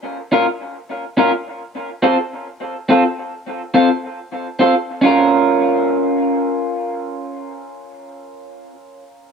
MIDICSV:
0, 0, Header, 1, 2, 480
1, 0, Start_track
1, 0, Key_signature, -5, "minor"
1, 0, Tempo, 857510
1, 895, Time_signature, 4, 2, 24, 8
1, 5217, End_track
2, 0, Start_track
2, 0, Title_t, "Clean electric guitar"
2, 0, Program_c, 0, 27
2, 177, Note_on_c, 0, 61, 74
2, 181, Note_on_c, 0, 65, 92
2, 185, Note_on_c, 0, 70, 99
2, 252, Note_off_c, 0, 61, 0
2, 254, Note_off_c, 0, 65, 0
2, 256, Note_off_c, 0, 70, 0
2, 655, Note_on_c, 0, 61, 89
2, 660, Note_on_c, 0, 65, 82
2, 663, Note_on_c, 0, 70, 96
2, 731, Note_off_c, 0, 61, 0
2, 733, Note_off_c, 0, 65, 0
2, 735, Note_off_c, 0, 70, 0
2, 1133, Note_on_c, 0, 60, 87
2, 1134, Note_on_c, 0, 65, 79
2, 1139, Note_on_c, 0, 69, 97
2, 1209, Note_off_c, 0, 60, 0
2, 1210, Note_off_c, 0, 65, 0
2, 1213, Note_off_c, 0, 69, 0
2, 1616, Note_on_c, 0, 60, 86
2, 1622, Note_on_c, 0, 65, 94
2, 1626, Note_on_c, 0, 69, 91
2, 1691, Note_off_c, 0, 60, 0
2, 1694, Note_off_c, 0, 65, 0
2, 1696, Note_off_c, 0, 69, 0
2, 2094, Note_on_c, 0, 60, 87
2, 2094, Note_on_c, 0, 65, 94
2, 2100, Note_on_c, 0, 69, 98
2, 2170, Note_off_c, 0, 60, 0
2, 2170, Note_off_c, 0, 65, 0
2, 2173, Note_off_c, 0, 69, 0
2, 2570, Note_on_c, 0, 60, 74
2, 2576, Note_on_c, 0, 65, 81
2, 2579, Note_on_c, 0, 69, 86
2, 2648, Note_off_c, 0, 60, 0
2, 2651, Note_off_c, 0, 65, 0
2, 2652, Note_off_c, 0, 69, 0
2, 2806, Note_on_c, 0, 61, 92
2, 2818, Note_on_c, 0, 65, 84
2, 2832, Note_on_c, 0, 70, 98
2, 4874, Note_off_c, 0, 61, 0
2, 4885, Note_off_c, 0, 65, 0
2, 4899, Note_off_c, 0, 70, 0
2, 5217, End_track
0, 0, End_of_file